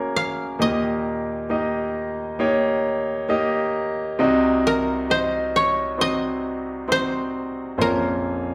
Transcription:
Already playing: grand piano F#2 C#3 A#3 C#4 F#4 A#4 C#5, koto F#5
0.16 koto F5
0.59 grand piano D#2 A#2 A#3 D#4 G4 D#5, koto D#5
1.49 grand piano A#3 D#4 G4 D#5
2.39 grand piano A#3 D#4 G4 C#5
3.29 grand piano A#3 D#4 G4 D#5
4.19 grand piano C2 C3 C4 D#4 F#4 D#5
4.67 koto A#4
5.10 grand piano D#4 F#4 D#5, koto C5
5.56 koto C#5
5.98 grand piano C4 D#4 F#4 C5, koto D#5
6.88 grand piano C4 D#4 F#4 C5
6.92 koto C5
7.77 grand piano A#1 F2 A#3 C#4 F4 C5, koto A#4

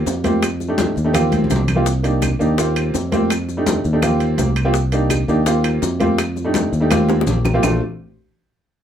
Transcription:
0.06 fingered electric bass F2, high bongo, low bongo, high conga, low timbale, maracas
0.24 upright piano A#3 C4 F4 G4, high bongo, high conga, high timbale, maracas
0.43 high bongo, high conga, high timbale, claves, maracas
0.60 high bongo, high conga, maracas
0.68 upright piano A3 D4 D#4 G4
0.78 high bongo, high conga, high timbale, low timbale, maracas
0.96 fingered electric bass D#2, high conga, maracas
1.05 upright piano A3 D4 D#4 G4
1.13 upright piano A#3 C4 F4 G4, high bongo, high conga, low conga, high timbale, claves, maracas
1.32 high bongo, high conga, high timbale, maracas
1.44 low conga
1.50 fingered electric bass C2, high bongo, low bongo, high timbale, low timbale, maracas
1.56 low conga
1.68 high bongo, low conga, high timbale, claves, maracas
1.75 upright piano A#3 C4 F4 G4
1.86 high bongo, high conga, maracas
2.03 upright piano A#3 D4 D#4 G4, high bongo, high conga, high timbale, maracas
2.22 high bongo, high conga, high timbale, low timbale, claves, maracas
2.39 fingered electric bass D#2, upright piano A#3 D4 D#4 G4, high conga, maracas
2.57 upright piano A#3 C4 F4 G4, high bongo, high conga, high timbale, maracas
2.76 high bongo, high conga, high timbale, claves, maracas
2.94 fingered electric bass F2, high bongo, low bongo, high conga, low timbale, maracas
3.12 upright piano A#3 C4 F4 G4, high bongo, high conga, high timbale, maracas
3.30 high bongo, high conga, high timbale, claves, maracas
3.49 high bongo, high conga, maracas
3.57 upright piano A3 D4 D#4 G4
3.66 high bongo, high conga, high timbale, low timbale, maracas
3.84 fingered electric bass D#2, high conga, maracas
3.93 upright piano A3 D4 D#4 G4
4.02 upright piano A#3 C4 F4 G4, high bongo, high conga, low conga, high timbale, claves, maracas
4.20 high bongo, high conga, high timbale, maracas
4.38 fingered electric bass C2, high bongo, low bongo, high conga, high timbale, low timbale, maracas
4.56 high bongo, high timbale, claves, maracas
4.65 upright piano A#3 C4 F4 G4
4.74 high bongo, high conga, maracas
4.92 upright piano A#3 D4 D#4 G4, high bongo, high conga, high timbale, maracas
5.10 high bongo, high conga, high timbale, low timbale, claves, maracas
5.28 fingered electric bass D#2, upright piano A#3 D4 D#4 G4, high conga, maracas
5.46 upright piano A#3 C4 F4 G4, high bongo, high conga, high timbale, maracas
5.64 high bongo, high conga, high timbale, claves, maracas
5.82 fingered electric bass F2, high bongo, low bongo, high conga, low timbale, maracas
6.00 upright piano A#3 C4 F4 G4, high bongo, high conga, high timbale, maracas
6.18 high bongo, high conga, high timbale, claves, maracas
6.36 high bongo, high conga, maracas
6.44 upright piano A3 D4 D#4 G4
6.54 high bongo, high conga, high timbale, low timbale, maracas
6.73 fingered electric bass D#2, high conga, maracas
6.81 upright piano A3 D4 D#4 G4
6.90 upright piano A#3 C4 F4 G4, high bongo, high conga, high timbale, claves, maracas
7.09 high bongo, high timbale, maracas
7.21 high bongo
7.27 fingered electric bass A#1, low conga, maracas
7.45 low bongo, low conga, low timbale, claves, maracas
7.54 upright piano A#3 C4 F4 G4
7.63 fingered electric bass A#1, upright piano A3 C4 D4 F4, low bongo, low conga, low timbale, claves, maracas

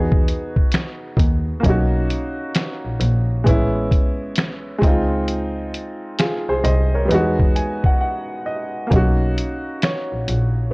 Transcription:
Already playing: double bass E2, upright piano B3 D#4 F#4 G#4, felt piano G#4
0.12 kick
0.28 closed hi-hat
0.56 kick
0.72 finger snap, snare, closed hi-hat
1.17 double bass D#2, kick, closed hi-hat
1.60 double bass B1, upright piano A#3 C#4, kick
1.64 upright piano D#4, closed hi-hat
1.69 upright piano F#4
2.10 closed hi-hat
2.55 finger snap, snare, closed hi-hat
2.85 double bass A#1
3.00 double bass A#1, closed hi-hat
3.44 double bass A1, upright piano G#3 B3 C#4, kick, closed hi-hat
3.48 upright piano E4
3.91 kick, closed hi-hat
4.36 finger snap, snare, closed hi-hat
4.78 double bass C#2, upright piano G#3 C4, kick
4.83 upright piano D#4 F4, closed hi-hat
5.28 closed hi-hat
5.74 closed hi-hat
6.19 upright piano F4 G#4, finger snap, snare, closed hi-hat
6.48 double bass C2, upright piano G#4 C5
6.64 double bass C2, upright piano C5 D#5, closed hi-hat
6.94 upright piano A#4 C#5
7.05 upright piano G3 B3
7.09 double bass E2, upright piano G#3 D#4, closed hi-hat
7.14 upright piano F#4
7.39 kick
7.56 upright piano G#5, closed hi-hat
7.84 upright piano F#5, kick
8.01 upright piano F#5
8.46 upright piano D#5
8.87 upright piano A#3 C#4
8.91 double bass B1, upright piano D#4, kick, closed hi-hat
8.96 upright piano F#4
9.38 closed hi-hat
9.82 felt piano C#5, finger snap, snare, closed hi-hat
10.12 double bass A#1
10.28 double bass A#1, closed hi-hat

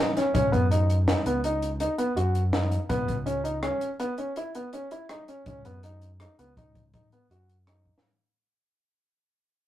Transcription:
0.00 felt piano D#4
0.17 felt piano C#4, snare, closed hi-hat
0.34 fingered electric bass C#2, felt piano C#4, kick, closed hi-hat
0.52 fingered electric bass F#2, felt piano B3, kick, closed hi-hat
0.71 felt piano D#4, closed hi-hat
0.90 closed hi-hat
1.08 felt piano D#4, snare, closed hi-hat
1.26 fingered electric bass C#2, felt piano B3, closed hi-hat
1.44 felt piano D#4, closed hi-hat
1.62 closed hi-hat
1.80 felt piano D#4, closed hi-hat
1.98 felt piano B3, closed hi-hat
2.16 fingered electric bass F#2, felt piano F#4, closed hi-hat
2.35 closed hi-hat
2.53 felt piano D#4, snare, closed hi-hat
2.72 closed hi-hat
2.89 fingered electric bass C#2, felt piano B3, kick, closed hi-hat
3.08 fingered electric bass C#2, kick, closed hi-hat
3.26 felt piano C#4, closed hi-hat
3.44 felt piano D#4, closed hi-hat
3.63 felt piano C#4, cross-stick, closed hi-hat
3.81 closed hi-hat
4.00 felt piano B3, closed hi-hat
4.18 felt piano C#4, closed hi-hat
4.36 felt piano E4, closed hi-hat
4.55 felt piano B3, closed hi-hat
4.73 felt piano C#4, closed hi-hat
4.91 felt piano E4, closed hi-hat
5.09 felt piano D#4, cross-stick, closed hi-hat
5.28 felt piano C#4, closed hi-hat
5.46 fingered electric bass C#2, felt piano C#4, kick, closed hi-hat
5.65 fingered electric bass F#2, felt piano B3, closed hi-hat
5.83 felt piano D#4, closed hi-hat
6.02 closed hi-hat
6.20 felt piano D#4, cross-stick, closed hi-hat
6.39 fingered electric bass C#2, felt piano B3, closed hi-hat
6.57 felt piano D#4, kick, closed hi-hat
6.75 kick, closed hi-hat
6.94 felt piano D#4, kick, closed hi-hat
7.12 felt piano B3, closed hi-hat
7.30 fingered electric bass F#2, felt piano F#4, closed hi-hat
7.49 closed hi-hat
7.67 felt piano D#4, cross-stick, closed hi-hat
7.86 kick
7.98 snare

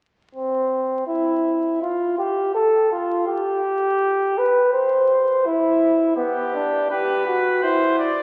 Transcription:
0.35 flugelhorn C4
1.07 flugelhorn E4
1.82 flugelhorn F4
2.18 flugelhorn G4
2.55 flugelhorn A4
2.91 flugelhorn F4
3.27 flugelhorn G4
4.38 flugelhorn B4
4.73 flugelhorn C5
5.46 flugelhorn E4
6.17 flugelhorn B3, trumpet G4
6.54 flugelhorn D4
6.90 flugelhorn G4, trumpet B4
7.27 flugelhorn F#4
7.62 flugelhorn E4, trumpet C5
7.99 trumpet D5

